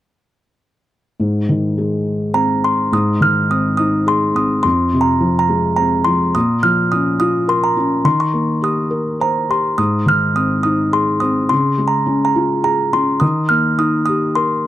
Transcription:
1.20 G#2
1.49 D#3
1.78 G#3
2.34 C4 A#5
2.64 C6
2.92 G#2 D#6
3.21 D#3 F6
3.50 C4 D#6
3.77 D#4 D#6
4.07 G#4 C6
4.35 C4 D#6
4.63 F2 C6
4.93 C3
5.01 A#5
5.21 F3
5.39 A#5
5.49 G#3
5.76 C4 A#5
6.04 F3 C6
6.35 A#2 D#6
6.63 F3 F6
6.92 C#4 D#6
7.20 F4 D#6
7.48 A#4 C6
7.64 A#5
7.77 C#4
8.05 D#3 C6
8.20 C#6
8.34 A#3
8.62 G4 D#6
8.91 A#4
9.20 C5 A#5
9.49 G4 C6
9.78 G#2 D#6
10.06 D#3 F6
10.35 C4 D#6
10.63 D#4 D#6
10.92 G#4 C6
11.20 C4 D#6
11.49 C#3 C6
11.78 G#3
11.88 A#5
12.06 C#4
12.25 A#5
12.36 F4
12.64 G#4 A#5
12.93 C#4 C6
13.20 D#3 D#6
13.49 A#3 F6
13.79 D#4 D#6
14.06 G4 D#6
14.35 A#4 C6

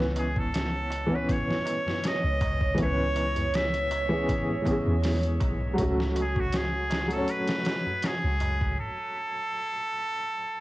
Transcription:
Already playing: C#2 E3 B3 C#4 B4 C#5
0.00 snare
0.16 G#4, closed hi-hat, darbuka tek
0.36 A4, kick, darbuka tek
0.54 snare, closed hi-hat, darbuka tek
0.73 darbuka tek
0.90 closed hi-hat, darbuka tek
1.07 E3 B3, darbuka tek
1.13 C#4 B4 C#5
1.29 C#5, kick, closed hi-hat, darbuka tek
1.48 snare, darbuka tek
1.66 closed hi-hat, darbuka tek
1.86 snare, darbuka tek, darbuka dum
2.03 D#5, snare, closed hi-hat, darbuka tek
2.23 C#2, darbuka tek
2.41 kick, closed hi-hat, darbuka tek, darbuka dum
2.61 kick, darbuka tek
2.75 C#2 E3 B3, kick, closed hi-hat, darbuka tek
2.80 C#4 B4 C#5
2.99 darbuka tek
3.16 closed hi-hat, darbuka tek
3.36 closed hi-hat, darbuka tek, darbuka dum
3.52 E5, snare, closed hi-hat, darbuka tek
3.73 closed hi-hat, darbuka tek
3.91 closed hi-hat, darbuka tek
4.09 E3 B3 C#4, darbuka tek
4.13 G#4
4.28 kick, closed hi-hat, darbuka tek
4.48 darbuka tek
4.62 E3 B3, darbuka tek
4.66 C#4, kick, closed hi-hat
4.71 G#4
4.86 E2, darbuka tek
5.02 snare, open hi-hat, darbuka tek
5.22 closed hi-hat, darbuka tek
5.40 B1, kick, closed hi-hat, darbuka tek
5.61 darbuka tek
5.74 F#3 A3
5.78 C#2 C#4, kick, closed hi-hat, darbuka tek
5.83 F#4
5.98 snare, darbuka tek
6.16 closed hi-hat, darbuka tek
6.21 G#4
6.36 F#4, kick, darbuka tek
6.52 G#4, snare, closed hi-hat, darbuka tek
6.73 darbuka tek
6.90 snare, closed hi-hat, darbuka tek
7.08 F#3 A3, closed hi-hat, darbuka tek
7.13 C#4 A4
7.17 C#5
7.28 B4, closed hi-hat, darbuka tek
7.47 snare, closed hi-hat, darbuka tek
7.65 snare, closed hi-hat, darbuka tek
7.86 darbuka tek, darbuka dum
8.02 G#4, snare, closed hi-hat, darbuka tek
8.23 C#2, darbuka tek
8.40 closed hi-hat, darbuka tek, darbuka dum
8.61 kick, darbuka tek
8.80 A4

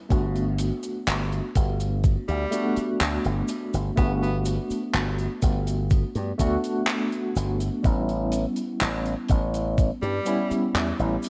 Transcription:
0.09 G1 A3 B3 D4 F#4, kick, closed hi-hat, cabasa
0.35 closed hi-hat
0.58 closed hi-hat, cabasa
0.83 closed hi-hat, cabasa
1.07 G1, clap, closed hi-hat, cabasa
1.32 closed hi-hat
1.55 G1, kick, closed hi-hat, cabasa
1.80 closed hi-hat, cabasa
2.04 kick, closed hi-hat, cabasa
2.28 D2 G3, closed hi-hat
2.51 A3 B3 D4 F#4, closed hi-hat, cabasa
2.76 muted slap bass stroke, closed hi-hat, cabasa
3.01 D2, clap, closed hi-hat, cabasa
3.24 G1, closed hi-hat
3.48 closed hi-hat, cabasa
3.74 G1, closed hi-hat, cabasa
3.96 G1 A3 B3 D4 F#4, kick, closed hi-hat, cabasa
4.22 B3, closed hi-hat
4.45 closed hi-hat, cabasa
4.70 muted slap bass stroke, closed hi-hat, cabasa
4.94 G1, clap, closed hi-hat, cabasa
5.18 closed hi-hat
5.42 G1, kick, closed hi-hat, cabasa
5.67 closed hi-hat, cabasa
5.90 kick, closed hi-hat, cabasa
6.15 G2, closed hi-hat
6.38 D2 A3 B3 D4 F#4, kick, closed hi-hat, cabasa
6.64 closed hi-hat, cabasa
6.87 clap, closed hi-hat, cabasa
7.12 closed hi-hat
7.36 G1, closed hi-hat, cabasa
7.60 closed hi-hat, cabasa
7.83 A1 G3 B3 C#4 E4, kick, closed hi-hat, cabasa
8.09 closed hi-hat
8.32 closed hi-hat, cabasa
8.56 closed hi-hat, cabasa
8.81 A1, clap, closed hi-hat, cabasa
9.06 closed hi-hat
9.29 A1, kick, closed hi-hat, cabasa
9.54 closed hi-hat, cabasa
9.78 kick, closed hi-hat, cabasa
10.02 G2 G3, closed hi-hat
10.25 G3 B3 C#4 E4, closed hi-hat, cabasa
10.51 muted slap bass stroke, closed hi-hat, cabasa
10.75 E2, clap, closed hi-hat, cabasa
10.99 A1, closed hi-hat
11.22 closed hi-hat, cabasa

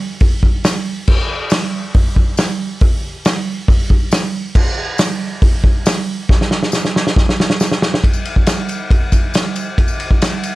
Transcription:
0.20 kick, open hi-hat
0.43 kick
0.64 snare, open hi-hat, tambourine
1.07 kick, crash
1.50 snare, open hi-hat, tambourine
1.94 kick, open hi-hat
2.16 kick
2.37 snare, open hi-hat, tambourine
2.81 kick, open hi-hat
3.25 snare, open hi-hat, tambourine
3.68 kick, open hi-hat
3.90 kick
4.11 snare, open hi-hat, tambourine
4.55 kick, crash
4.98 snare, open hi-hat, tambourine
5.42 kick, open hi-hat
5.64 kick
5.86 snare, open hi-hat, tambourine
6.29 kick, snare
6.41 snare
6.51 snare
6.63 snare
6.72 snare, tambourine
6.85 snare
6.96 snare
7.07 snare
7.16 kick, snare
7.29 snare
7.40 snare
7.50 snare
7.60 snare, tambourine
7.72 snare
7.82 snare
7.94 snare
8.04 kick, ride
8.13 tambourine
8.25 ride, tambourine
8.36 kick
8.46 snare, ride, tambourine
8.69 ride, tambourine
8.91 kick, ride
9.12 kick, ride, tambourine
9.34 snare, ride, tambourine
9.56 ride, tambourine
9.78 kick, ride
9.88 tambourine
10.00 ride, tambourine
10.11 kick
10.22 snare, ride, tambourine
10.43 ride, tambourine

